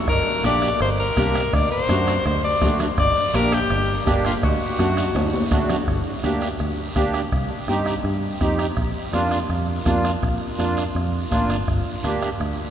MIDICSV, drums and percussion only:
0, 0, Header, 1, 3, 480
1, 0, Start_track
1, 0, Key_signature, -2, "minor"
1, 0, Tempo, 362757
1, 101, Time_signature, 4, 2, 24, 8
1, 7778, Key_signature, -2, "minor"
1, 16809, End_track
2, 0, Start_track
2, 0, Title_t, "Two-headed folk drums"
2, 100, Note_on_c, 9, 36, 84
2, 102, Note_on_c, 9, 37, 80
2, 233, Note_off_c, 9, 36, 0
2, 234, Note_off_c, 9, 37, 0
2, 586, Note_on_c, 9, 37, 75
2, 718, Note_off_c, 9, 37, 0
2, 821, Note_on_c, 9, 37, 82
2, 953, Note_off_c, 9, 37, 0
2, 1065, Note_on_c, 9, 37, 74
2, 1197, Note_off_c, 9, 37, 0
2, 1544, Note_on_c, 9, 36, 88
2, 1547, Note_on_c, 9, 37, 79
2, 1676, Note_off_c, 9, 36, 0
2, 1679, Note_off_c, 9, 37, 0
2, 1791, Note_on_c, 9, 37, 87
2, 1924, Note_off_c, 9, 37, 0
2, 2025, Note_on_c, 9, 36, 84
2, 2030, Note_on_c, 9, 37, 89
2, 2157, Note_off_c, 9, 36, 0
2, 2162, Note_off_c, 9, 37, 0
2, 2506, Note_on_c, 9, 37, 78
2, 2638, Note_off_c, 9, 37, 0
2, 2748, Note_on_c, 9, 37, 87
2, 2880, Note_off_c, 9, 37, 0
2, 2985, Note_on_c, 9, 37, 81
2, 3118, Note_off_c, 9, 37, 0
2, 3461, Note_on_c, 9, 36, 83
2, 3461, Note_on_c, 9, 37, 84
2, 3593, Note_off_c, 9, 36, 0
2, 3594, Note_off_c, 9, 37, 0
2, 3705, Note_on_c, 9, 37, 94
2, 3837, Note_off_c, 9, 37, 0
2, 3940, Note_on_c, 9, 36, 91
2, 3941, Note_on_c, 9, 37, 93
2, 4073, Note_off_c, 9, 36, 0
2, 4073, Note_off_c, 9, 37, 0
2, 4423, Note_on_c, 9, 37, 73
2, 4555, Note_off_c, 9, 37, 0
2, 4661, Note_on_c, 9, 37, 85
2, 4793, Note_off_c, 9, 37, 0
2, 4899, Note_on_c, 9, 37, 83
2, 5031, Note_off_c, 9, 37, 0
2, 5382, Note_on_c, 9, 36, 84
2, 5388, Note_on_c, 9, 37, 85
2, 5514, Note_off_c, 9, 36, 0
2, 5521, Note_off_c, 9, 37, 0
2, 5619, Note_on_c, 9, 37, 85
2, 5751, Note_off_c, 9, 37, 0
2, 5862, Note_on_c, 9, 36, 86
2, 5865, Note_on_c, 9, 37, 86
2, 5994, Note_off_c, 9, 36, 0
2, 5997, Note_off_c, 9, 37, 0
2, 6339, Note_on_c, 9, 37, 76
2, 6472, Note_off_c, 9, 37, 0
2, 6577, Note_on_c, 9, 37, 83
2, 6709, Note_off_c, 9, 37, 0
2, 6826, Note_on_c, 9, 37, 81
2, 6959, Note_off_c, 9, 37, 0
2, 7295, Note_on_c, 9, 36, 86
2, 7299, Note_on_c, 9, 37, 83
2, 7427, Note_off_c, 9, 36, 0
2, 7432, Note_off_c, 9, 37, 0
2, 7535, Note_on_c, 9, 37, 82
2, 7668, Note_off_c, 9, 37, 0
2, 7773, Note_on_c, 9, 36, 79
2, 7779, Note_on_c, 9, 37, 76
2, 7905, Note_off_c, 9, 36, 0
2, 7912, Note_off_c, 9, 37, 0
2, 8253, Note_on_c, 9, 37, 71
2, 8386, Note_off_c, 9, 37, 0
2, 8496, Note_on_c, 9, 37, 73
2, 8628, Note_off_c, 9, 37, 0
2, 8733, Note_on_c, 9, 37, 69
2, 8865, Note_off_c, 9, 37, 0
2, 9207, Note_on_c, 9, 36, 79
2, 9208, Note_on_c, 9, 37, 73
2, 9339, Note_off_c, 9, 36, 0
2, 9340, Note_off_c, 9, 37, 0
2, 9448, Note_on_c, 9, 37, 80
2, 9580, Note_off_c, 9, 37, 0
2, 9689, Note_on_c, 9, 36, 82
2, 9691, Note_on_c, 9, 37, 79
2, 9821, Note_off_c, 9, 36, 0
2, 9824, Note_off_c, 9, 37, 0
2, 10163, Note_on_c, 9, 37, 73
2, 10296, Note_off_c, 9, 37, 0
2, 10400, Note_on_c, 9, 37, 78
2, 10532, Note_off_c, 9, 37, 0
2, 10647, Note_on_c, 9, 37, 67
2, 10779, Note_off_c, 9, 37, 0
2, 11125, Note_on_c, 9, 37, 74
2, 11126, Note_on_c, 9, 36, 78
2, 11258, Note_off_c, 9, 37, 0
2, 11259, Note_off_c, 9, 36, 0
2, 11363, Note_on_c, 9, 37, 80
2, 11495, Note_off_c, 9, 37, 0
2, 11600, Note_on_c, 9, 37, 80
2, 11604, Note_on_c, 9, 36, 79
2, 11733, Note_off_c, 9, 37, 0
2, 11736, Note_off_c, 9, 36, 0
2, 12085, Note_on_c, 9, 37, 72
2, 12218, Note_off_c, 9, 37, 0
2, 12321, Note_on_c, 9, 37, 77
2, 12454, Note_off_c, 9, 37, 0
2, 12569, Note_on_c, 9, 37, 71
2, 12701, Note_off_c, 9, 37, 0
2, 13046, Note_on_c, 9, 37, 71
2, 13047, Note_on_c, 9, 36, 77
2, 13179, Note_off_c, 9, 37, 0
2, 13180, Note_off_c, 9, 36, 0
2, 13292, Note_on_c, 9, 37, 79
2, 13425, Note_off_c, 9, 37, 0
2, 13532, Note_on_c, 9, 36, 78
2, 13538, Note_on_c, 9, 37, 79
2, 13665, Note_off_c, 9, 36, 0
2, 13670, Note_off_c, 9, 37, 0
2, 14022, Note_on_c, 9, 37, 71
2, 14154, Note_off_c, 9, 37, 0
2, 14263, Note_on_c, 9, 37, 73
2, 14395, Note_off_c, 9, 37, 0
2, 14506, Note_on_c, 9, 37, 69
2, 14639, Note_off_c, 9, 37, 0
2, 14975, Note_on_c, 9, 36, 82
2, 14980, Note_on_c, 9, 37, 77
2, 15107, Note_off_c, 9, 36, 0
2, 15113, Note_off_c, 9, 37, 0
2, 15218, Note_on_c, 9, 37, 75
2, 15350, Note_off_c, 9, 37, 0
2, 15453, Note_on_c, 9, 36, 82
2, 15455, Note_on_c, 9, 37, 80
2, 15585, Note_off_c, 9, 36, 0
2, 15587, Note_off_c, 9, 37, 0
2, 15936, Note_on_c, 9, 37, 66
2, 16069, Note_off_c, 9, 37, 0
2, 16175, Note_on_c, 9, 37, 77
2, 16308, Note_off_c, 9, 37, 0
2, 16418, Note_on_c, 9, 37, 72
2, 16550, Note_off_c, 9, 37, 0
2, 16809, End_track
3, 0, Start_track
3, 0, Title_t, "Drums"
3, 100, Note_on_c, 9, 74, 70
3, 102, Note_on_c, 9, 56, 105
3, 109, Note_on_c, 9, 63, 33
3, 233, Note_off_c, 9, 74, 0
3, 235, Note_off_c, 9, 56, 0
3, 241, Note_off_c, 9, 63, 0
3, 577, Note_on_c, 9, 56, 57
3, 577, Note_on_c, 9, 73, 70
3, 585, Note_on_c, 9, 63, 82
3, 709, Note_off_c, 9, 56, 0
3, 710, Note_off_c, 9, 73, 0
3, 718, Note_off_c, 9, 63, 0
3, 820, Note_on_c, 9, 73, 69
3, 952, Note_off_c, 9, 73, 0
3, 1059, Note_on_c, 9, 56, 81
3, 1062, Note_on_c, 9, 74, 66
3, 1063, Note_on_c, 9, 63, 34
3, 1192, Note_off_c, 9, 56, 0
3, 1194, Note_off_c, 9, 74, 0
3, 1196, Note_off_c, 9, 63, 0
3, 1542, Note_on_c, 9, 56, 70
3, 1546, Note_on_c, 9, 63, 89
3, 1547, Note_on_c, 9, 73, 68
3, 1675, Note_off_c, 9, 56, 0
3, 1678, Note_off_c, 9, 63, 0
3, 1679, Note_off_c, 9, 73, 0
3, 1782, Note_on_c, 9, 73, 66
3, 1914, Note_off_c, 9, 73, 0
3, 2021, Note_on_c, 9, 74, 71
3, 2024, Note_on_c, 9, 56, 103
3, 2030, Note_on_c, 9, 63, 37
3, 2154, Note_off_c, 9, 74, 0
3, 2156, Note_off_c, 9, 56, 0
3, 2162, Note_off_c, 9, 63, 0
3, 2500, Note_on_c, 9, 73, 70
3, 2505, Note_on_c, 9, 56, 65
3, 2508, Note_on_c, 9, 63, 86
3, 2633, Note_off_c, 9, 73, 0
3, 2638, Note_off_c, 9, 56, 0
3, 2640, Note_off_c, 9, 63, 0
3, 2742, Note_on_c, 9, 73, 71
3, 2875, Note_off_c, 9, 73, 0
3, 2979, Note_on_c, 9, 74, 71
3, 2980, Note_on_c, 9, 56, 80
3, 2988, Note_on_c, 9, 63, 34
3, 3112, Note_off_c, 9, 74, 0
3, 3113, Note_off_c, 9, 56, 0
3, 3120, Note_off_c, 9, 63, 0
3, 3463, Note_on_c, 9, 63, 87
3, 3463, Note_on_c, 9, 64, 90
3, 3469, Note_on_c, 9, 56, 69
3, 3469, Note_on_c, 9, 73, 67
3, 3595, Note_off_c, 9, 63, 0
3, 3595, Note_off_c, 9, 64, 0
3, 3601, Note_off_c, 9, 56, 0
3, 3602, Note_off_c, 9, 73, 0
3, 3702, Note_on_c, 9, 64, 72
3, 3703, Note_on_c, 9, 73, 72
3, 3834, Note_off_c, 9, 64, 0
3, 3835, Note_off_c, 9, 73, 0
3, 3939, Note_on_c, 9, 74, 72
3, 3948, Note_on_c, 9, 56, 106
3, 3950, Note_on_c, 9, 63, 34
3, 4072, Note_off_c, 9, 74, 0
3, 4080, Note_off_c, 9, 56, 0
3, 4082, Note_off_c, 9, 63, 0
3, 4418, Note_on_c, 9, 73, 71
3, 4424, Note_on_c, 9, 63, 86
3, 4433, Note_on_c, 9, 56, 65
3, 4550, Note_off_c, 9, 73, 0
3, 4556, Note_off_c, 9, 63, 0
3, 4566, Note_off_c, 9, 56, 0
3, 4656, Note_on_c, 9, 73, 74
3, 4789, Note_off_c, 9, 73, 0
3, 4901, Note_on_c, 9, 74, 69
3, 4904, Note_on_c, 9, 56, 77
3, 5034, Note_off_c, 9, 74, 0
3, 5037, Note_off_c, 9, 56, 0
3, 5383, Note_on_c, 9, 63, 91
3, 5384, Note_on_c, 9, 73, 66
3, 5388, Note_on_c, 9, 56, 69
3, 5388, Note_on_c, 9, 66, 68
3, 5515, Note_off_c, 9, 63, 0
3, 5516, Note_off_c, 9, 73, 0
3, 5521, Note_off_c, 9, 56, 0
3, 5521, Note_off_c, 9, 66, 0
3, 5631, Note_on_c, 9, 73, 76
3, 5763, Note_off_c, 9, 73, 0
3, 5864, Note_on_c, 9, 63, 35
3, 5865, Note_on_c, 9, 56, 103
3, 5873, Note_on_c, 9, 74, 69
3, 5996, Note_off_c, 9, 63, 0
3, 5997, Note_off_c, 9, 56, 0
3, 6005, Note_off_c, 9, 74, 0
3, 6337, Note_on_c, 9, 56, 61
3, 6346, Note_on_c, 9, 63, 84
3, 6347, Note_on_c, 9, 73, 67
3, 6470, Note_off_c, 9, 56, 0
3, 6478, Note_off_c, 9, 63, 0
3, 6479, Note_off_c, 9, 73, 0
3, 6578, Note_on_c, 9, 73, 76
3, 6711, Note_off_c, 9, 73, 0
3, 6811, Note_on_c, 9, 74, 72
3, 6816, Note_on_c, 9, 56, 77
3, 6816, Note_on_c, 9, 65, 88
3, 6826, Note_on_c, 9, 63, 75
3, 6944, Note_off_c, 9, 74, 0
3, 6949, Note_off_c, 9, 56, 0
3, 6949, Note_off_c, 9, 65, 0
3, 6958, Note_off_c, 9, 63, 0
3, 7059, Note_on_c, 9, 66, 77
3, 7061, Note_on_c, 9, 63, 80
3, 7191, Note_off_c, 9, 66, 0
3, 7194, Note_off_c, 9, 63, 0
3, 7290, Note_on_c, 9, 73, 67
3, 7295, Note_on_c, 9, 56, 69
3, 7295, Note_on_c, 9, 66, 88
3, 7422, Note_off_c, 9, 73, 0
3, 7428, Note_off_c, 9, 56, 0
3, 7428, Note_off_c, 9, 66, 0
3, 7534, Note_on_c, 9, 73, 70
3, 7539, Note_on_c, 9, 66, 87
3, 7540, Note_on_c, 9, 64, 86
3, 7666, Note_off_c, 9, 73, 0
3, 7672, Note_off_c, 9, 66, 0
3, 7673, Note_off_c, 9, 64, 0
3, 7771, Note_on_c, 9, 74, 64
3, 7783, Note_on_c, 9, 63, 30
3, 7903, Note_off_c, 9, 74, 0
3, 7916, Note_off_c, 9, 63, 0
3, 8248, Note_on_c, 9, 73, 64
3, 8260, Note_on_c, 9, 63, 77
3, 8380, Note_off_c, 9, 73, 0
3, 8392, Note_off_c, 9, 63, 0
3, 8483, Note_on_c, 9, 73, 64
3, 8615, Note_off_c, 9, 73, 0
3, 8722, Note_on_c, 9, 74, 62
3, 8741, Note_on_c, 9, 63, 31
3, 8854, Note_off_c, 9, 74, 0
3, 8873, Note_off_c, 9, 63, 0
3, 9208, Note_on_c, 9, 73, 64
3, 9216, Note_on_c, 9, 63, 78
3, 9341, Note_off_c, 9, 73, 0
3, 9348, Note_off_c, 9, 63, 0
3, 9446, Note_on_c, 9, 73, 65
3, 9579, Note_off_c, 9, 73, 0
3, 9687, Note_on_c, 9, 74, 64
3, 9699, Note_on_c, 9, 63, 30
3, 9820, Note_off_c, 9, 74, 0
3, 9832, Note_off_c, 9, 63, 0
3, 10173, Note_on_c, 9, 73, 61
3, 10179, Note_on_c, 9, 63, 73
3, 10306, Note_off_c, 9, 73, 0
3, 10311, Note_off_c, 9, 63, 0
3, 10408, Note_on_c, 9, 73, 70
3, 10540, Note_off_c, 9, 73, 0
3, 10648, Note_on_c, 9, 74, 63
3, 10656, Note_on_c, 9, 63, 30
3, 10781, Note_off_c, 9, 74, 0
3, 10788, Note_off_c, 9, 63, 0
3, 11123, Note_on_c, 9, 73, 64
3, 11130, Note_on_c, 9, 63, 77
3, 11256, Note_off_c, 9, 73, 0
3, 11263, Note_off_c, 9, 63, 0
3, 11366, Note_on_c, 9, 73, 64
3, 11498, Note_off_c, 9, 73, 0
3, 11604, Note_on_c, 9, 74, 62
3, 11608, Note_on_c, 9, 63, 30
3, 11736, Note_off_c, 9, 74, 0
3, 11740, Note_off_c, 9, 63, 0
3, 12087, Note_on_c, 9, 73, 59
3, 12089, Note_on_c, 9, 63, 81
3, 12219, Note_off_c, 9, 73, 0
3, 12221, Note_off_c, 9, 63, 0
3, 12320, Note_on_c, 9, 73, 62
3, 12453, Note_off_c, 9, 73, 0
3, 12563, Note_on_c, 9, 74, 64
3, 12572, Note_on_c, 9, 63, 30
3, 12695, Note_off_c, 9, 74, 0
3, 12704, Note_off_c, 9, 63, 0
3, 13040, Note_on_c, 9, 73, 60
3, 13052, Note_on_c, 9, 63, 82
3, 13172, Note_off_c, 9, 73, 0
3, 13185, Note_off_c, 9, 63, 0
3, 13288, Note_on_c, 9, 73, 61
3, 13421, Note_off_c, 9, 73, 0
3, 13531, Note_on_c, 9, 74, 60
3, 13536, Note_on_c, 9, 63, 31
3, 13663, Note_off_c, 9, 74, 0
3, 13668, Note_off_c, 9, 63, 0
3, 14009, Note_on_c, 9, 73, 67
3, 14012, Note_on_c, 9, 63, 71
3, 14141, Note_off_c, 9, 73, 0
3, 14144, Note_off_c, 9, 63, 0
3, 14251, Note_on_c, 9, 73, 63
3, 14384, Note_off_c, 9, 73, 0
3, 14493, Note_on_c, 9, 74, 61
3, 14497, Note_on_c, 9, 63, 30
3, 14625, Note_off_c, 9, 74, 0
3, 14630, Note_off_c, 9, 63, 0
3, 14966, Note_on_c, 9, 73, 59
3, 14968, Note_on_c, 9, 63, 77
3, 15098, Note_off_c, 9, 73, 0
3, 15100, Note_off_c, 9, 63, 0
3, 15207, Note_on_c, 9, 73, 63
3, 15339, Note_off_c, 9, 73, 0
3, 15446, Note_on_c, 9, 74, 64
3, 15457, Note_on_c, 9, 63, 30
3, 15578, Note_off_c, 9, 74, 0
3, 15590, Note_off_c, 9, 63, 0
3, 15923, Note_on_c, 9, 73, 63
3, 15940, Note_on_c, 9, 63, 75
3, 16056, Note_off_c, 9, 73, 0
3, 16072, Note_off_c, 9, 63, 0
3, 16167, Note_on_c, 9, 73, 67
3, 16299, Note_off_c, 9, 73, 0
3, 16412, Note_on_c, 9, 74, 59
3, 16420, Note_on_c, 9, 63, 31
3, 16545, Note_off_c, 9, 74, 0
3, 16553, Note_off_c, 9, 63, 0
3, 16809, End_track
0, 0, End_of_file